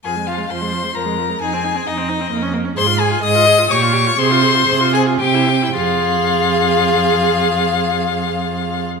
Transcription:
X:1
M:3/4
L:1/16
Q:1/4=124
K:Fm
V:1 name="Violin"
a2 f2 c'4 b4 | a4 e6 z2 | c'2 a2 e'4 d'4 | c'6 a2 g4 |
f12- | f12 |]
V:2 name="Violin"
A2 F2 c4 B4 | A4 E6 z2 | c2 A2 e4 d4 | c6 A2 G4 |
F12- | F12 |]
V:3 name="Viola"
F, A, F, A, F, A, F, A, F, A, F, A, | E C E C E C E C B, D B, D | A F A F A F A F G F G F | A F A F A F A F G =E G E |
A12- | A12 |]
V:4 name="Cello" clef=bass
F,,4 F,,4 F,,4 | F,,4 F,,4 F,,4 | A,,4 A,,4 B,,4 | C,4 C,4 C,4 |
F,,12- | F,,12 |]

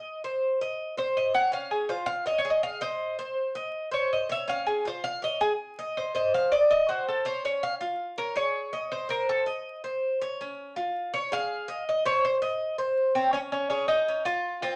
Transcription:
X:1
M:4/4
L:1/8
Q:1/4=163
K:Db
V:1 name="Cuban tres"
z4 z c e g | f A c f (3e d e f c- | c2 z3 d e =e | f A c f e A z2 |
c ^d f =d ^d ^F =A c | d f z2 B d3 | c B =A z4 z | z4 d f3 |
e d c z4 C | D D D E2 F2 F |]
V:2 name="Cuban tres"
e c2 e2 c2 d | D2 F2 d A2 e- | e c2 e2 c2 d | D2 F2 d A2 e- |
e c2 ^d2 c2 _d | D2 F2 d A2 e- | e c2 e2 c2 d | D2 F2 d A2 e- |
e c2 e2 c2 d | D2 A2 D F2 C |]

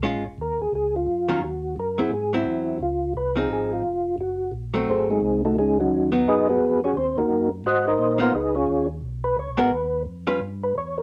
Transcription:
X:1
M:4/4
L:1/8
Q:"Swing" 1/4=174
K:Abdor
V:1 name="Tonewheel organ"
z2 B A A F3 | G2 B A A =E3 | F2 c A A F3 | G2 z2 [=CA=A=c] [_A,CE_A]2 [=A,EG=A] |
[A,DEA] [G,DEG]2 z [EAce] [CGAc]2 [DGAd] | [=C=c] [B,EGB]2 z [Gceg] [EBce]2 [FBcf] | [EAce] [DFAd]2 z2 c d c- | c2 z3 =B ^c _B |]
V:2 name="Hollow-body jazz guitar"
[A,DF] z6 [E,G,DF] | z3 [G,=C_F] z [G,C=E]3 | z3 [F,=CE]3 z2 | z3 [G,=A,=C]3 z2 |
z3 [G,CE]3 z2 | z6 z [F,CE] | z6 z [A,CGB] | z3 [=G,DF=B] z4 |]
V:3 name="Tonewheel organ" clef=bass
(3B,,, A,,, F,,, E,, E,, D,,2 F,,2 | E,,2 G,,2 A,,2 =E,,2 | D,,2 =C,,2 A,,,2 F,,,2 | G,,,2 B,,,2 A,,,2 =C,,2 |
D,,2 E,,2 G,,2 F,,2 | E,, E,, G,,2 A,,2 B,,2 | D,,2 E,,2 C,,2 (3D,, C,, A,,, | ^D,,2 F,,2 =G,,2 =E,,2 |]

